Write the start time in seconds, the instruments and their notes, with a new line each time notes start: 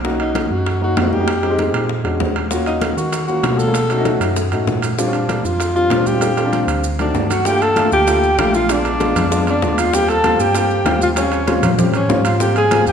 Already playing: tine electric piano B1
0.04 grand piano A#3 C#4 D#4 F#4, high bongo, high conga
0.20 alto saxophone D#4, high conga, high timbale
0.35 high bongo, high conga, high timbale
0.50 tine electric piano F#2, alto saxophone F#4, high conga
0.66 high bongo, high conga, high timbale
0.81 grand piano A#3 C#4 D#4 F#4, alto saxophone F#4, high conga
0.96 tine electric piano F2, grand piano A#3 C#4 D#4 F4, high bongo, low bongo, high conga, high timbale, low timbale
1.04 grand piano A#3 C#4 D#4 F#4
1.13 alto saxophone G4, high conga
1.20 grand piano A#3 C#4 D#4 F#4
1.28 high bongo, high conga, high timbale
1.43 grand piano G#3 C4 D#4 G4, high bongo, high conga, high timbale
1.50 grand piano G#3 C4 D#4 G4
1.59 high bongo, high conga, high timbale
1.73 tine electric piano A#2, high bongo, high conga, high timbale
1.89 high bongo, high conga
2.04 tine electric piano E2, grand piano G#3 C#4 D4 F#4, high bongo, high conga, high timbale
2.20 tine electric piano D#2, high bongo, low bongo, high conga, low timbale
2.36 high conga, high timbale
2.51 grand piano A#3 C#4 F4 F#4, high bongo, high conga, maracas
2.66 alto saxophone D#4, high conga, high timbale, maracas
2.82 high bongo, high conga, high timbale, maracas
2.97 tine electric piano D#3, alto saxophone F#4, high conga, maracas
3.13 high bongo, high conga, high timbale, maracas
3.27 grand piano A#3 C#4 F4 F#4, alto saxophone F#4, high conga, maracas
3.43 tine electric piano B2, grand piano A#3 C#4 F4 F#4, high bongo, low bongo, high conga, high timbale, maracas
3.52 grand piano A#3 C#4 F4 F#4
3.58 alto saxophone A4, high conga, maracas
3.67 grand piano A#3 C#4 F4 G#4
3.74 high bongo, high conga, high timbale, maracas
3.90 grand piano A3 C#4 D#4 F#4, high bongo, high conga, high timbale, maracas
3.98 grand piano A3 C#4 D#4 F#4
4.05 high bongo, high conga, high timbale, maracas
4.20 tine electric piano F#2, high bongo, high conga, high timbale, maracas
4.36 high bongo, high conga, maracas
4.52 tine electric piano G#2, grand piano A3 C#4 D#4 F#4, high bongo, high conga, high timbale, maracas
4.67 tine electric piano A#2, high bongo, low bongo, high conga, maracas
4.82 high conga, high timbale, maracas
4.98 grand piano G3 C4 D4 F4, high bongo, high conga, maracas
5.07 alto saxophone C#4
5.13 alto saxophone D4, high conga, high timbale, maracas
5.29 high bongo, high conga, high timbale, maracas
5.44 tine electric piano F2, alto saxophone F4, high conga, maracas
5.60 high bongo, high timbale, maracas
5.75 grand piano G3 C4 D4 F4, alto saxophone F4, high conga, maracas
5.90 tine electric piano A#2, grand piano G3 C4 D4 G4, high bongo, low bongo, high conga, high timbale, low timbale, maracas
5.98 grand piano G3 C4 D4 F4
6.06 alto saxophone G4, high conga, maracas
6.14 grand piano G3 C4 D4 F4
6.21 high bongo, high conga, high timbale, maracas
6.37 grand piano G3 C4 D4 F4, high bongo, high conga, high timbale, maracas
6.45 grand piano G3 C4 D4 F4
6.53 high conga, high timbale, maracas
6.67 tine electric piano D2, high conga, high timbale, maracas
6.84 high conga, maracas
6.99 grand piano D#3 A3 C4 F#4, alto saxophone D4, flute D5, low bongo, high conga, high timbale, maracas
7.14 tine electric piano G2, low bongo, high conga, low timbale, maracas
7.30 alto saxophone F#4, flute F#5, low bongo, high conga, high timbale, maracas
7.45 grand piano A3 A#3 D4 F4, alto saxophone G4, flute G5, high bongo, high conga, maracas
7.61 alto saxophone A4, flute A5, high conga, high timbale, maracas
7.76 grand piano A3 A#3 D4 F4, high bongo, high conga, high timbale, maracas
7.91 tine electric piano D2, alto saxophone G4, flute G5, high conga, maracas
8.07 grand piano A3 A#3 D4 F4, high bongo, high timbale, maracas
8.23 high conga, maracas
8.38 tine electric piano A#1, grand piano A3 A#3 D4 F4, high bongo, low bongo, high conga, high timbale, maracas
8.54 alto saxophone F4, flute F5, high conga, maracas
8.69 grand piano G#3 B3 D4 F4, alto saxophone D4, flute D5, high bongo, high conga, high timbale, maracas
8.85 high bongo, high conga, high timbale, maracas
9.00 grand piano G#3 B3 D4 F4, high bongo, high conga, high timbale, maracas
9.15 tine electric piano F2, high bongo, high conga, low conga, high timbale, maracas
9.31 grand piano G#3 B3 D4 F4, high bongo, high conga, maracas
9.47 tine electric piano F2, alto saxophone D4, flute D5, high bongo, high conga, high timbale, maracas
9.62 tine electric piano D#2, grand piano G#3 B3 D4 F4, high bongo, low bongo, high conga, maracas
9.78 alto saxophone F4, flute F5, high conga, high timbale, maracas
9.93 grand piano G3 A#3 C4 F4, alto saxophone G4, flute G5, high bongo, high conga, maracas
10.08 alto saxophone A4, flute A5, high conga, high timbale, maracas
10.24 grand piano G3 A#3 C4 F4, high bongo, high conga, high timbale, maracas
10.39 tine electric piano G2, alto saxophone G4, flute G5, high conga, maracas
10.55 grand piano G3 A#3 C4 F4, high bongo, high conga, high timbale, maracas
10.71 high conga, maracas
10.85 tine electric piano D#2, grand piano G3 A#3 C4 F4, high bongo, low bongo, high conga, high timbale, maracas
11.02 alto saxophone F4, flute F5, high conga, maracas
11.16 grand piano G3 C4 C#4 F4, alto saxophone C#4, flute C#5, high bongo, high conga, high timbale, maracas
11.32 high bongo, high conga, high timbale, maracas
11.47 grand piano G3 C4 C#4 F4, high bongo, high conga, high timbale, maracas
11.62 tine electric piano A#2, high bongo, high conga, low conga, high timbale, maracas
11.78 grand piano G3 C4 C#4 G4, high bongo, high conga, low conga, maracas
11.93 tine electric piano A2, alto saxophone C#4, flute C#5, high bongo, high conga, high timbale, maracas
12.09 tine electric piano G#2, grand piano G3 C4 C#4 F4, high bongo, low bongo, high conga, low timbale, maracas
12.25 alto saxophone F4, flute F5, high conga, high timbale, maracas
12.40 grand piano G3 A#3 C4 F4, alto saxophone G4, flute G5, high bongo, high conga, maracas
12.56 alto saxophone G#4, flute G#5, high conga, high timbale, maracas
12.71 grand piano G3 A#3 C4 F4, high bongo, high conga, high timbale, maracas
12.86 tine electric piano D#2, alto saxophone G4, flute G5, high conga, maracas